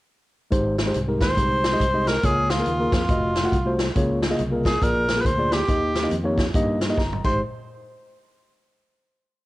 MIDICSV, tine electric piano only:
0, 0, Header, 1, 2, 480
1, 0, Start_track
1, 0, Key_signature, -4, "major"
1, 0, Tempo, 431965
1, 574, Time_signature, 4, 2, 24, 8
1, 10504, End_track
2, 0, Start_track
2, 0, Title_t, "Tine electric piano"
2, 0, Program_c, 0, 4
2, 562, Note_on_c, 0, 56, 79
2, 569, Note_on_c, 0, 63, 73
2, 573, Note_on_c, 0, 44, 70
2, 574, Note_on_c, 0, 67, 74
2, 577, Note_on_c, 0, 72, 97
2, 832, Note_off_c, 0, 56, 0
2, 835, Note_off_c, 0, 63, 0
2, 838, Note_off_c, 0, 67, 0
2, 839, Note_off_c, 0, 72, 0
2, 952, Note_on_c, 0, 56, 75
2, 954, Note_on_c, 0, 63, 63
2, 961, Note_on_c, 0, 67, 76
2, 967, Note_on_c, 0, 72, 86
2, 1079, Note_off_c, 0, 56, 0
2, 1080, Note_off_c, 0, 63, 0
2, 1084, Note_off_c, 0, 67, 0
2, 1086, Note_off_c, 0, 72, 0
2, 1191, Note_on_c, 0, 56, 63
2, 1198, Note_on_c, 0, 63, 66
2, 1202, Note_on_c, 0, 67, 60
2, 1208, Note_on_c, 0, 70, 74
2, 1300, Note_off_c, 0, 44, 0
2, 1416, Note_off_c, 0, 56, 0
2, 1419, Note_off_c, 0, 63, 0
2, 1421, Note_off_c, 0, 67, 0
2, 1424, Note_off_c, 0, 70, 0
2, 1521, Note_on_c, 0, 56, 69
2, 1526, Note_on_c, 0, 63, 66
2, 1530, Note_on_c, 0, 67, 60
2, 1536, Note_on_c, 0, 72, 77
2, 1789, Note_off_c, 0, 56, 0
2, 1792, Note_off_c, 0, 63, 0
2, 1793, Note_off_c, 0, 67, 0
2, 1797, Note_off_c, 0, 72, 0
2, 1910, Note_on_c, 0, 56, 77
2, 1917, Note_on_c, 0, 63, 67
2, 1920, Note_on_c, 0, 67, 79
2, 1926, Note_on_c, 0, 75, 87
2, 2036, Note_off_c, 0, 56, 0
2, 2039, Note_off_c, 0, 63, 0
2, 2041, Note_off_c, 0, 67, 0
2, 2044, Note_off_c, 0, 75, 0
2, 2148, Note_on_c, 0, 56, 68
2, 2153, Note_on_c, 0, 63, 64
2, 2157, Note_on_c, 0, 67, 63
2, 2163, Note_on_c, 0, 75, 76
2, 2372, Note_off_c, 0, 56, 0
2, 2375, Note_off_c, 0, 63, 0
2, 2377, Note_off_c, 0, 67, 0
2, 2380, Note_off_c, 0, 75, 0
2, 2481, Note_on_c, 0, 58, 71
2, 2488, Note_on_c, 0, 65, 61
2, 2489, Note_on_c, 0, 49, 58
2, 2492, Note_on_c, 0, 68, 63
2, 2498, Note_on_c, 0, 73, 77
2, 2747, Note_off_c, 0, 58, 0
2, 2750, Note_off_c, 0, 65, 0
2, 2752, Note_off_c, 0, 68, 0
2, 2755, Note_off_c, 0, 73, 0
2, 2867, Note_on_c, 0, 58, 66
2, 2873, Note_on_c, 0, 65, 62
2, 2879, Note_on_c, 0, 68, 58
2, 2884, Note_on_c, 0, 70, 77
2, 2993, Note_off_c, 0, 58, 0
2, 2995, Note_off_c, 0, 65, 0
2, 2998, Note_off_c, 0, 68, 0
2, 3001, Note_off_c, 0, 70, 0
2, 3105, Note_on_c, 0, 58, 69
2, 3110, Note_on_c, 0, 65, 62
2, 3115, Note_on_c, 0, 68, 58
2, 3119, Note_on_c, 0, 70, 82
2, 3213, Note_off_c, 0, 49, 0
2, 3329, Note_off_c, 0, 58, 0
2, 3331, Note_off_c, 0, 65, 0
2, 3334, Note_off_c, 0, 68, 0
2, 3336, Note_off_c, 0, 70, 0
2, 3432, Note_on_c, 0, 57, 70
2, 3439, Note_on_c, 0, 65, 66
2, 3445, Note_on_c, 0, 66, 66
2, 3451, Note_on_c, 0, 75, 78
2, 3700, Note_off_c, 0, 57, 0
2, 3704, Note_off_c, 0, 65, 0
2, 3707, Note_off_c, 0, 66, 0
2, 3710, Note_off_c, 0, 75, 0
2, 3816, Note_on_c, 0, 57, 81
2, 3823, Note_on_c, 0, 65, 74
2, 3828, Note_on_c, 0, 66, 73
2, 3834, Note_on_c, 0, 78, 90
2, 3945, Note_off_c, 0, 57, 0
2, 3948, Note_off_c, 0, 65, 0
2, 3951, Note_off_c, 0, 66, 0
2, 3954, Note_off_c, 0, 78, 0
2, 4061, Note_on_c, 0, 57, 77
2, 4064, Note_on_c, 0, 65, 72
2, 4067, Note_on_c, 0, 66, 73
2, 4075, Note_on_c, 0, 72, 85
2, 4284, Note_off_c, 0, 57, 0
2, 4286, Note_off_c, 0, 65, 0
2, 4288, Note_off_c, 0, 66, 0
2, 4292, Note_off_c, 0, 72, 0
2, 4396, Note_on_c, 0, 58, 85
2, 4402, Note_on_c, 0, 49, 73
2, 4402, Note_on_c, 0, 65, 73
2, 4408, Note_on_c, 0, 68, 71
2, 4412, Note_on_c, 0, 73, 84
2, 4661, Note_off_c, 0, 58, 0
2, 4663, Note_off_c, 0, 65, 0
2, 4667, Note_off_c, 0, 68, 0
2, 4669, Note_off_c, 0, 73, 0
2, 4774, Note_on_c, 0, 58, 81
2, 4780, Note_on_c, 0, 65, 68
2, 4785, Note_on_c, 0, 68, 74
2, 4790, Note_on_c, 0, 75, 88
2, 4902, Note_off_c, 0, 58, 0
2, 4905, Note_off_c, 0, 65, 0
2, 4908, Note_off_c, 0, 68, 0
2, 4910, Note_off_c, 0, 75, 0
2, 5015, Note_on_c, 0, 58, 74
2, 5018, Note_on_c, 0, 65, 64
2, 5025, Note_on_c, 0, 68, 61
2, 5030, Note_on_c, 0, 70, 77
2, 5127, Note_off_c, 0, 49, 0
2, 5241, Note_off_c, 0, 58, 0
2, 5242, Note_off_c, 0, 65, 0
2, 5246, Note_off_c, 0, 68, 0
2, 5248, Note_off_c, 0, 70, 0
2, 5355, Note_on_c, 0, 58, 75
2, 5360, Note_on_c, 0, 65, 65
2, 5362, Note_on_c, 0, 46, 60
2, 5365, Note_on_c, 0, 68, 70
2, 5370, Note_on_c, 0, 74, 69
2, 5619, Note_off_c, 0, 58, 0
2, 5622, Note_off_c, 0, 65, 0
2, 5624, Note_off_c, 0, 68, 0
2, 5626, Note_off_c, 0, 74, 0
2, 5738, Note_on_c, 0, 58, 74
2, 5741, Note_on_c, 0, 65, 62
2, 5749, Note_on_c, 0, 68, 65
2, 5754, Note_on_c, 0, 70, 73
2, 5863, Note_off_c, 0, 58, 0
2, 5865, Note_off_c, 0, 65, 0
2, 5869, Note_off_c, 0, 68, 0
2, 5872, Note_off_c, 0, 70, 0
2, 5973, Note_on_c, 0, 58, 61
2, 5981, Note_on_c, 0, 65, 58
2, 5985, Note_on_c, 0, 68, 65
2, 5992, Note_on_c, 0, 74, 77
2, 6086, Note_off_c, 0, 46, 0
2, 6199, Note_off_c, 0, 58, 0
2, 6203, Note_off_c, 0, 65, 0
2, 6205, Note_off_c, 0, 68, 0
2, 6209, Note_off_c, 0, 74, 0
2, 6310, Note_on_c, 0, 58, 72
2, 6315, Note_on_c, 0, 63, 63
2, 6319, Note_on_c, 0, 51, 62
2, 6320, Note_on_c, 0, 67, 63
2, 6326, Note_on_c, 0, 75, 74
2, 6577, Note_off_c, 0, 58, 0
2, 6579, Note_off_c, 0, 63, 0
2, 6582, Note_off_c, 0, 67, 0
2, 6585, Note_off_c, 0, 75, 0
2, 6694, Note_on_c, 0, 58, 77
2, 6698, Note_on_c, 0, 63, 74
2, 6703, Note_on_c, 0, 67, 66
2, 6709, Note_on_c, 0, 75, 84
2, 6822, Note_off_c, 0, 58, 0
2, 6824, Note_off_c, 0, 63, 0
2, 6826, Note_off_c, 0, 67, 0
2, 6829, Note_off_c, 0, 75, 0
2, 6931, Note_on_c, 0, 58, 88
2, 6937, Note_on_c, 0, 63, 76
2, 6943, Note_on_c, 0, 67, 80
2, 6950, Note_on_c, 0, 73, 92
2, 7046, Note_off_c, 0, 51, 0
2, 7159, Note_off_c, 0, 58, 0
2, 7162, Note_off_c, 0, 63, 0
2, 7165, Note_off_c, 0, 67, 0
2, 7168, Note_off_c, 0, 73, 0
2, 7269, Note_on_c, 0, 58, 84
2, 7276, Note_on_c, 0, 63, 76
2, 7282, Note_on_c, 0, 67, 78
2, 7285, Note_on_c, 0, 75, 101
2, 7538, Note_off_c, 0, 58, 0
2, 7541, Note_off_c, 0, 63, 0
2, 7544, Note_off_c, 0, 67, 0
2, 7546, Note_off_c, 0, 75, 0
2, 7653, Note_on_c, 0, 58, 71
2, 7658, Note_on_c, 0, 63, 75
2, 7662, Note_on_c, 0, 67, 67
2, 7667, Note_on_c, 0, 75, 92
2, 7761, Note_on_c, 0, 82, 62
2, 7783, Note_off_c, 0, 58, 0
2, 7785, Note_off_c, 0, 63, 0
2, 7787, Note_off_c, 0, 67, 0
2, 7790, Note_off_c, 0, 75, 0
2, 8038, Note_off_c, 0, 82, 0
2, 8052, Note_on_c, 0, 63, 67
2, 8052, Note_on_c, 0, 67, 62
2, 8054, Note_on_c, 0, 56, 69
2, 8054, Note_on_c, 0, 72, 76
2, 8055, Note_on_c, 0, 32, 73
2, 8227, Note_off_c, 0, 63, 0
2, 8227, Note_off_c, 0, 67, 0
2, 8228, Note_off_c, 0, 56, 0
2, 8228, Note_off_c, 0, 72, 0
2, 8229, Note_off_c, 0, 32, 0
2, 10504, End_track
0, 0, End_of_file